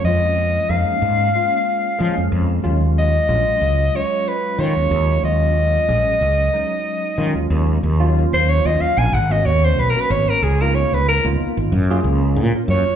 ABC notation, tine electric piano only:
X:1
M:4/4
L:1/16
Q:"Swing 16ths" 1/4=92
K:Ebm
V:1 name="Tine electric piano"
[A,B,DF]4 [A,B,DE]4 [A,B,DF]4 [A,B,DA]4 | [G,A,DF]4 [G,A,DF]4 [G,A,DF]4 [G,A,DF]4 | [G,A,DF]4 [G,A,DA]4 [G,A,DE]4 [G,A,DF]4 | z [G,B,DF]4 [G,B,DF]3 z [B,CDG]4 [B,CDG]3 |
z [B,CEF]4 [B,CEF]3 z [B,DFA]4 [B,DFB]3 |]